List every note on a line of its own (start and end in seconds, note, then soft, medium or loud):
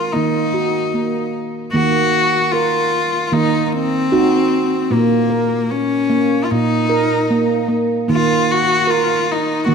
0.00 0.11 D#3 medium
0.00 0.14 F4 medium
0.00 0.14 A#4 medium
0.13 1.70 D#3 medium
0.13 0.54 A#3 medium
0.13 1.33 D#4 medium
0.54 0.94 F#4 medium
0.94 1.72 A#3 medium
1.73 2.11 D#3 medium
1.73 2.53 A#3 medium
1.73 2.53 F#4 medium
2.52 3.27 F4 medium
2.52 3.33 A#4 medium
3.27 3.35 F4 medium
3.32 3.70 D#3 loud
3.32 4.12 A#3 medium
3.32 3.66 D#4 medium
3.66 3.74 D#4 medium
3.72 4.94 C4 loud
4.12 4.88 D#4 medium
4.12 4.91 F#4 medium
4.90 5.29 A#2 medium
4.90 5.31 A#3 medium
4.90 5.73 A#3 medium
5.30 6.10 A#4 medium
5.71 6.46 C#4 medium
6.10 6.89 A#3 medium
6.45 6.52 F4 medium
6.51 6.88 A#2 loud
6.51 7.69 D#4 medium
6.89 7.69 A#4 medium
7.31 7.67 A#3 medium
7.68 8.07 A#3 medium
8.08 8.46 D#3 medium
8.08 8.88 A#3 medium
8.08 8.53 F4 medium
8.51 8.92 F#4 loud
8.87 9.33 F4 medium
8.87 9.67 A#4 medium
9.31 9.68 D#4 medium
9.66 9.75 D#3 medium
9.66 9.75 A#3 medium
9.66 9.75 F#4 loud